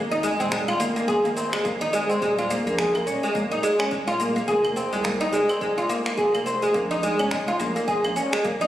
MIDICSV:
0, 0, Header, 1, 5, 480
1, 0, Start_track
1, 0, Key_signature, -5, "minor"
1, 0, Tempo, 566038
1, 1882, Time_signature, 4, 2, 24, 8
1, 7352, End_track
2, 0, Start_track
2, 0, Title_t, "Oud"
2, 0, Program_c, 0, 24
2, 0, Note_on_c, 0, 58, 81
2, 86, Note_off_c, 0, 58, 0
2, 97, Note_on_c, 0, 63, 94
2, 195, Note_off_c, 0, 63, 0
2, 196, Note_on_c, 0, 56, 94
2, 331, Note_off_c, 0, 56, 0
2, 339, Note_on_c, 0, 60, 75
2, 435, Note_off_c, 0, 60, 0
2, 437, Note_on_c, 0, 56, 78
2, 519, Note_off_c, 0, 56, 0
2, 578, Note_on_c, 0, 65, 101
2, 675, Note_off_c, 0, 65, 0
2, 677, Note_on_c, 0, 58, 97
2, 805, Note_off_c, 0, 58, 0
2, 815, Note_on_c, 0, 58, 76
2, 914, Note_off_c, 0, 58, 0
2, 915, Note_on_c, 0, 68, 81
2, 1051, Note_off_c, 0, 68, 0
2, 1060, Note_on_c, 0, 58, 75
2, 1151, Note_off_c, 0, 58, 0
2, 1157, Note_on_c, 0, 60, 75
2, 1292, Note_off_c, 0, 60, 0
2, 1299, Note_on_c, 0, 56, 65
2, 1390, Note_off_c, 0, 56, 0
2, 1397, Note_on_c, 0, 58, 75
2, 1525, Note_off_c, 0, 58, 0
2, 1536, Note_on_c, 0, 63, 99
2, 1634, Note_off_c, 0, 63, 0
2, 1637, Note_on_c, 0, 56, 97
2, 1772, Note_off_c, 0, 56, 0
2, 1776, Note_on_c, 0, 60, 68
2, 1874, Note_off_c, 0, 60, 0
2, 1882, Note_on_c, 0, 56, 86
2, 1961, Note_off_c, 0, 56, 0
2, 2022, Note_on_c, 0, 65, 93
2, 2117, Note_off_c, 0, 65, 0
2, 2124, Note_on_c, 0, 58, 96
2, 2252, Note_off_c, 0, 58, 0
2, 2263, Note_on_c, 0, 58, 76
2, 2357, Note_off_c, 0, 58, 0
2, 2363, Note_on_c, 0, 68, 74
2, 2495, Note_off_c, 0, 68, 0
2, 2500, Note_on_c, 0, 58, 70
2, 2591, Note_off_c, 0, 58, 0
2, 2601, Note_on_c, 0, 61, 72
2, 2734, Note_off_c, 0, 61, 0
2, 2741, Note_on_c, 0, 56, 76
2, 2832, Note_off_c, 0, 56, 0
2, 2840, Note_on_c, 0, 58, 81
2, 2966, Note_off_c, 0, 58, 0
2, 2980, Note_on_c, 0, 63, 94
2, 3076, Note_off_c, 0, 63, 0
2, 3079, Note_on_c, 0, 56, 96
2, 3213, Note_off_c, 0, 56, 0
2, 3216, Note_on_c, 0, 61, 71
2, 3314, Note_off_c, 0, 61, 0
2, 3317, Note_on_c, 0, 56, 73
2, 3399, Note_off_c, 0, 56, 0
2, 3455, Note_on_c, 0, 65, 109
2, 3554, Note_off_c, 0, 65, 0
2, 3559, Note_on_c, 0, 58, 90
2, 3686, Note_off_c, 0, 58, 0
2, 3696, Note_on_c, 0, 58, 72
2, 3794, Note_off_c, 0, 58, 0
2, 3797, Note_on_c, 0, 68, 82
2, 3932, Note_off_c, 0, 68, 0
2, 3938, Note_on_c, 0, 58, 72
2, 4030, Note_off_c, 0, 58, 0
2, 4038, Note_on_c, 0, 60, 78
2, 4172, Note_off_c, 0, 60, 0
2, 4177, Note_on_c, 0, 56, 78
2, 4269, Note_off_c, 0, 56, 0
2, 4276, Note_on_c, 0, 58, 83
2, 4404, Note_off_c, 0, 58, 0
2, 4415, Note_on_c, 0, 63, 104
2, 4513, Note_off_c, 0, 63, 0
2, 4516, Note_on_c, 0, 56, 91
2, 4651, Note_off_c, 0, 56, 0
2, 4658, Note_on_c, 0, 60, 76
2, 4755, Note_off_c, 0, 60, 0
2, 4759, Note_on_c, 0, 56, 79
2, 4840, Note_off_c, 0, 56, 0
2, 4899, Note_on_c, 0, 65, 90
2, 4995, Note_off_c, 0, 65, 0
2, 4998, Note_on_c, 0, 58, 99
2, 5128, Note_off_c, 0, 58, 0
2, 5138, Note_on_c, 0, 58, 70
2, 5235, Note_off_c, 0, 58, 0
2, 5237, Note_on_c, 0, 68, 74
2, 5372, Note_off_c, 0, 68, 0
2, 5382, Note_on_c, 0, 58, 75
2, 5472, Note_off_c, 0, 58, 0
2, 5477, Note_on_c, 0, 60, 76
2, 5612, Note_off_c, 0, 60, 0
2, 5616, Note_on_c, 0, 56, 73
2, 5709, Note_off_c, 0, 56, 0
2, 5718, Note_on_c, 0, 58, 85
2, 5845, Note_off_c, 0, 58, 0
2, 5857, Note_on_c, 0, 63, 103
2, 5955, Note_off_c, 0, 63, 0
2, 5962, Note_on_c, 0, 56, 100
2, 6094, Note_off_c, 0, 56, 0
2, 6100, Note_on_c, 0, 61, 84
2, 6196, Note_off_c, 0, 61, 0
2, 6199, Note_on_c, 0, 56, 81
2, 6280, Note_off_c, 0, 56, 0
2, 6341, Note_on_c, 0, 65, 92
2, 6437, Note_off_c, 0, 65, 0
2, 6441, Note_on_c, 0, 58, 96
2, 6570, Note_off_c, 0, 58, 0
2, 6580, Note_on_c, 0, 58, 80
2, 6676, Note_off_c, 0, 58, 0
2, 6680, Note_on_c, 0, 68, 81
2, 6813, Note_off_c, 0, 68, 0
2, 6820, Note_on_c, 0, 58, 73
2, 6911, Note_off_c, 0, 58, 0
2, 6920, Note_on_c, 0, 61, 77
2, 7053, Note_off_c, 0, 61, 0
2, 7061, Note_on_c, 0, 56, 70
2, 7151, Note_off_c, 0, 56, 0
2, 7161, Note_on_c, 0, 58, 78
2, 7287, Note_off_c, 0, 58, 0
2, 7301, Note_on_c, 0, 63, 104
2, 7352, Note_off_c, 0, 63, 0
2, 7352, End_track
3, 0, Start_track
3, 0, Title_t, "Analog synth bass"
3, 0, Program_c, 1, 38
3, 0, Note_on_c, 1, 32, 95
3, 255, Note_off_c, 1, 32, 0
3, 340, Note_on_c, 1, 27, 81
3, 620, Note_off_c, 1, 27, 0
3, 681, Note_on_c, 1, 32, 96
3, 768, Note_off_c, 1, 32, 0
3, 1058, Note_on_c, 1, 32, 99
3, 1339, Note_off_c, 1, 32, 0
3, 1539, Note_on_c, 1, 32, 81
3, 1819, Note_off_c, 1, 32, 0
3, 1880, Note_on_c, 1, 27, 102
3, 2175, Note_off_c, 1, 27, 0
3, 2260, Note_on_c, 1, 34, 85
3, 2540, Note_off_c, 1, 34, 0
3, 2603, Note_on_c, 1, 27, 95
3, 2688, Note_off_c, 1, 27, 0
3, 2980, Note_on_c, 1, 27, 100
3, 3043, Note_off_c, 1, 27, 0
3, 3459, Note_on_c, 1, 27, 98
3, 3739, Note_off_c, 1, 27, 0
3, 3800, Note_on_c, 1, 29, 104
3, 4095, Note_off_c, 1, 29, 0
3, 4180, Note_on_c, 1, 36, 79
3, 4460, Note_off_c, 1, 36, 0
3, 4521, Note_on_c, 1, 29, 90
3, 4607, Note_off_c, 1, 29, 0
3, 4899, Note_on_c, 1, 29, 108
3, 4962, Note_off_c, 1, 29, 0
3, 5377, Note_on_c, 1, 29, 95
3, 5658, Note_off_c, 1, 29, 0
3, 5722, Note_on_c, 1, 34, 96
3, 6016, Note_off_c, 1, 34, 0
3, 6103, Note_on_c, 1, 29, 85
3, 6381, Note_off_c, 1, 29, 0
3, 6442, Note_on_c, 1, 34, 91
3, 6528, Note_off_c, 1, 34, 0
3, 6820, Note_on_c, 1, 34, 106
3, 6882, Note_off_c, 1, 34, 0
3, 7299, Note_on_c, 1, 34, 102
3, 7352, Note_off_c, 1, 34, 0
3, 7352, End_track
4, 0, Start_track
4, 0, Title_t, "Tabla"
4, 103, Note_on_c, 9, 64, 74
4, 188, Note_off_c, 9, 64, 0
4, 200, Note_on_c, 9, 60, 62
4, 285, Note_off_c, 9, 60, 0
4, 337, Note_on_c, 9, 64, 94
4, 422, Note_off_c, 9, 64, 0
4, 573, Note_on_c, 9, 64, 81
4, 580, Note_on_c, 9, 63, 36
4, 581, Note_on_c, 9, 60, 69
4, 658, Note_off_c, 9, 64, 0
4, 665, Note_off_c, 9, 63, 0
4, 666, Note_off_c, 9, 60, 0
4, 1062, Note_on_c, 9, 63, 65
4, 1147, Note_off_c, 9, 63, 0
4, 1158, Note_on_c, 9, 60, 65
4, 1242, Note_off_c, 9, 60, 0
4, 1541, Note_on_c, 9, 60, 33
4, 1626, Note_off_c, 9, 60, 0
4, 1645, Note_on_c, 9, 63, 45
4, 1730, Note_off_c, 9, 63, 0
4, 2013, Note_on_c, 9, 64, 81
4, 2097, Note_off_c, 9, 64, 0
4, 2256, Note_on_c, 9, 64, 84
4, 2340, Note_off_c, 9, 64, 0
4, 2501, Note_on_c, 9, 64, 76
4, 2504, Note_on_c, 9, 60, 72
4, 2509, Note_on_c, 9, 63, 30
4, 2586, Note_off_c, 9, 64, 0
4, 2588, Note_off_c, 9, 60, 0
4, 2594, Note_off_c, 9, 63, 0
4, 2977, Note_on_c, 9, 63, 60
4, 3062, Note_off_c, 9, 63, 0
4, 3457, Note_on_c, 9, 60, 36
4, 3542, Note_off_c, 9, 60, 0
4, 3557, Note_on_c, 9, 63, 53
4, 3642, Note_off_c, 9, 63, 0
4, 3938, Note_on_c, 9, 64, 83
4, 4023, Note_off_c, 9, 64, 0
4, 4038, Note_on_c, 9, 60, 57
4, 4123, Note_off_c, 9, 60, 0
4, 4186, Note_on_c, 9, 64, 88
4, 4271, Note_off_c, 9, 64, 0
4, 4421, Note_on_c, 9, 60, 68
4, 4424, Note_on_c, 9, 64, 68
4, 4425, Note_on_c, 9, 63, 36
4, 4505, Note_off_c, 9, 60, 0
4, 4508, Note_off_c, 9, 64, 0
4, 4510, Note_off_c, 9, 63, 0
4, 4904, Note_on_c, 9, 63, 66
4, 4989, Note_off_c, 9, 63, 0
4, 4996, Note_on_c, 9, 60, 51
4, 5081, Note_off_c, 9, 60, 0
4, 5480, Note_on_c, 9, 63, 55
4, 5565, Note_off_c, 9, 63, 0
4, 5858, Note_on_c, 9, 64, 83
4, 5943, Note_off_c, 9, 64, 0
4, 6100, Note_on_c, 9, 64, 77
4, 6185, Note_off_c, 9, 64, 0
4, 6338, Note_on_c, 9, 63, 35
4, 6338, Note_on_c, 9, 64, 67
4, 6346, Note_on_c, 9, 60, 70
4, 6423, Note_off_c, 9, 63, 0
4, 6423, Note_off_c, 9, 64, 0
4, 6431, Note_off_c, 9, 60, 0
4, 6816, Note_on_c, 9, 63, 64
4, 6901, Note_off_c, 9, 63, 0
4, 7303, Note_on_c, 9, 60, 34
4, 7352, Note_off_c, 9, 60, 0
4, 7352, End_track
5, 0, Start_track
5, 0, Title_t, "Drums"
5, 104, Note_on_c, 9, 82, 22
5, 189, Note_off_c, 9, 82, 0
5, 202, Note_on_c, 9, 82, 75
5, 287, Note_off_c, 9, 82, 0
5, 344, Note_on_c, 9, 82, 34
5, 429, Note_off_c, 9, 82, 0
5, 440, Note_on_c, 9, 26, 69
5, 441, Note_on_c, 9, 36, 95
5, 444, Note_on_c, 9, 82, 46
5, 524, Note_off_c, 9, 26, 0
5, 525, Note_off_c, 9, 36, 0
5, 528, Note_off_c, 9, 82, 0
5, 579, Note_on_c, 9, 75, 71
5, 583, Note_on_c, 9, 82, 22
5, 664, Note_off_c, 9, 75, 0
5, 668, Note_off_c, 9, 82, 0
5, 685, Note_on_c, 9, 82, 76
5, 770, Note_off_c, 9, 82, 0
5, 824, Note_on_c, 9, 82, 36
5, 909, Note_off_c, 9, 82, 0
5, 920, Note_on_c, 9, 36, 107
5, 925, Note_on_c, 9, 82, 44
5, 1005, Note_off_c, 9, 36, 0
5, 1010, Note_off_c, 9, 82, 0
5, 1063, Note_on_c, 9, 82, 21
5, 1148, Note_off_c, 9, 82, 0
5, 1164, Note_on_c, 9, 82, 80
5, 1249, Note_off_c, 9, 82, 0
5, 1298, Note_on_c, 9, 26, 67
5, 1298, Note_on_c, 9, 75, 72
5, 1302, Note_on_c, 9, 82, 31
5, 1382, Note_off_c, 9, 26, 0
5, 1382, Note_off_c, 9, 75, 0
5, 1387, Note_off_c, 9, 82, 0
5, 1400, Note_on_c, 9, 36, 104
5, 1403, Note_on_c, 9, 82, 46
5, 1485, Note_off_c, 9, 36, 0
5, 1487, Note_off_c, 9, 82, 0
5, 1544, Note_on_c, 9, 82, 22
5, 1629, Note_off_c, 9, 82, 0
5, 1645, Note_on_c, 9, 82, 75
5, 1729, Note_off_c, 9, 82, 0
5, 1785, Note_on_c, 9, 82, 31
5, 1870, Note_off_c, 9, 82, 0
5, 1881, Note_on_c, 9, 36, 100
5, 1886, Note_on_c, 9, 82, 40
5, 1966, Note_off_c, 9, 36, 0
5, 1970, Note_off_c, 9, 82, 0
5, 2025, Note_on_c, 9, 82, 21
5, 2110, Note_off_c, 9, 82, 0
5, 2125, Note_on_c, 9, 82, 73
5, 2209, Note_off_c, 9, 82, 0
5, 2266, Note_on_c, 9, 82, 31
5, 2351, Note_off_c, 9, 82, 0
5, 2361, Note_on_c, 9, 36, 100
5, 2362, Note_on_c, 9, 26, 73
5, 2366, Note_on_c, 9, 82, 44
5, 2445, Note_off_c, 9, 36, 0
5, 2447, Note_off_c, 9, 26, 0
5, 2451, Note_off_c, 9, 82, 0
5, 2503, Note_on_c, 9, 75, 71
5, 2507, Note_on_c, 9, 82, 20
5, 2587, Note_off_c, 9, 75, 0
5, 2592, Note_off_c, 9, 82, 0
5, 2606, Note_on_c, 9, 82, 74
5, 2691, Note_off_c, 9, 82, 0
5, 2750, Note_on_c, 9, 82, 35
5, 2834, Note_off_c, 9, 82, 0
5, 2841, Note_on_c, 9, 36, 102
5, 2849, Note_on_c, 9, 82, 39
5, 2926, Note_off_c, 9, 36, 0
5, 2934, Note_off_c, 9, 82, 0
5, 2988, Note_on_c, 9, 82, 19
5, 3072, Note_off_c, 9, 82, 0
5, 3087, Note_on_c, 9, 82, 75
5, 3172, Note_off_c, 9, 82, 0
5, 3221, Note_on_c, 9, 26, 68
5, 3221, Note_on_c, 9, 75, 71
5, 3225, Note_on_c, 9, 82, 31
5, 3306, Note_off_c, 9, 26, 0
5, 3306, Note_off_c, 9, 75, 0
5, 3310, Note_off_c, 9, 82, 0
5, 3321, Note_on_c, 9, 36, 98
5, 3327, Note_on_c, 9, 82, 40
5, 3406, Note_off_c, 9, 36, 0
5, 3411, Note_off_c, 9, 82, 0
5, 3466, Note_on_c, 9, 82, 21
5, 3550, Note_off_c, 9, 82, 0
5, 3567, Note_on_c, 9, 82, 78
5, 3652, Note_off_c, 9, 82, 0
5, 3707, Note_on_c, 9, 82, 30
5, 3791, Note_off_c, 9, 82, 0
5, 3800, Note_on_c, 9, 36, 100
5, 3805, Note_on_c, 9, 82, 41
5, 3885, Note_off_c, 9, 36, 0
5, 3890, Note_off_c, 9, 82, 0
5, 3940, Note_on_c, 9, 75, 84
5, 3944, Note_on_c, 9, 82, 22
5, 4025, Note_off_c, 9, 75, 0
5, 4029, Note_off_c, 9, 82, 0
5, 4043, Note_on_c, 9, 82, 69
5, 4128, Note_off_c, 9, 82, 0
5, 4184, Note_on_c, 9, 82, 32
5, 4269, Note_off_c, 9, 82, 0
5, 4281, Note_on_c, 9, 26, 74
5, 4281, Note_on_c, 9, 36, 91
5, 4285, Note_on_c, 9, 82, 44
5, 4366, Note_off_c, 9, 26, 0
5, 4366, Note_off_c, 9, 36, 0
5, 4370, Note_off_c, 9, 82, 0
5, 4424, Note_on_c, 9, 82, 20
5, 4509, Note_off_c, 9, 82, 0
5, 4525, Note_on_c, 9, 82, 66
5, 4610, Note_off_c, 9, 82, 0
5, 4659, Note_on_c, 9, 75, 84
5, 4663, Note_on_c, 9, 82, 34
5, 4744, Note_off_c, 9, 75, 0
5, 4748, Note_off_c, 9, 82, 0
5, 4761, Note_on_c, 9, 36, 102
5, 4766, Note_on_c, 9, 82, 41
5, 4846, Note_off_c, 9, 36, 0
5, 4851, Note_off_c, 9, 82, 0
5, 4906, Note_on_c, 9, 82, 20
5, 4991, Note_off_c, 9, 82, 0
5, 5006, Note_on_c, 9, 82, 77
5, 5091, Note_off_c, 9, 82, 0
5, 5140, Note_on_c, 9, 26, 69
5, 5144, Note_on_c, 9, 82, 30
5, 5225, Note_off_c, 9, 26, 0
5, 5229, Note_off_c, 9, 82, 0
5, 5240, Note_on_c, 9, 36, 95
5, 5246, Note_on_c, 9, 82, 43
5, 5325, Note_off_c, 9, 36, 0
5, 5331, Note_off_c, 9, 82, 0
5, 5381, Note_on_c, 9, 75, 78
5, 5386, Note_on_c, 9, 82, 20
5, 5466, Note_off_c, 9, 75, 0
5, 5470, Note_off_c, 9, 82, 0
5, 5487, Note_on_c, 9, 82, 74
5, 5572, Note_off_c, 9, 82, 0
5, 5625, Note_on_c, 9, 82, 30
5, 5710, Note_off_c, 9, 82, 0
5, 5722, Note_on_c, 9, 36, 93
5, 5724, Note_on_c, 9, 82, 39
5, 5807, Note_off_c, 9, 36, 0
5, 5809, Note_off_c, 9, 82, 0
5, 5864, Note_on_c, 9, 82, 21
5, 5949, Note_off_c, 9, 82, 0
5, 5966, Note_on_c, 9, 82, 68
5, 6050, Note_off_c, 9, 82, 0
5, 6101, Note_on_c, 9, 75, 76
5, 6105, Note_on_c, 9, 82, 31
5, 6185, Note_off_c, 9, 75, 0
5, 6190, Note_off_c, 9, 82, 0
5, 6202, Note_on_c, 9, 26, 74
5, 6202, Note_on_c, 9, 36, 92
5, 6206, Note_on_c, 9, 82, 43
5, 6286, Note_off_c, 9, 26, 0
5, 6286, Note_off_c, 9, 36, 0
5, 6291, Note_off_c, 9, 82, 0
5, 6345, Note_on_c, 9, 82, 20
5, 6430, Note_off_c, 9, 82, 0
5, 6446, Note_on_c, 9, 82, 65
5, 6530, Note_off_c, 9, 82, 0
5, 6585, Note_on_c, 9, 82, 32
5, 6670, Note_off_c, 9, 82, 0
5, 6682, Note_on_c, 9, 36, 100
5, 6688, Note_on_c, 9, 82, 39
5, 6767, Note_off_c, 9, 36, 0
5, 6773, Note_off_c, 9, 82, 0
5, 6823, Note_on_c, 9, 75, 79
5, 6827, Note_on_c, 9, 82, 20
5, 6908, Note_off_c, 9, 75, 0
5, 6912, Note_off_c, 9, 82, 0
5, 6928, Note_on_c, 9, 82, 75
5, 7013, Note_off_c, 9, 82, 0
5, 7065, Note_on_c, 9, 26, 72
5, 7069, Note_on_c, 9, 82, 30
5, 7150, Note_off_c, 9, 26, 0
5, 7154, Note_off_c, 9, 82, 0
5, 7162, Note_on_c, 9, 36, 98
5, 7168, Note_on_c, 9, 82, 44
5, 7247, Note_off_c, 9, 36, 0
5, 7252, Note_off_c, 9, 82, 0
5, 7307, Note_on_c, 9, 82, 20
5, 7352, Note_off_c, 9, 82, 0
5, 7352, End_track
0, 0, End_of_file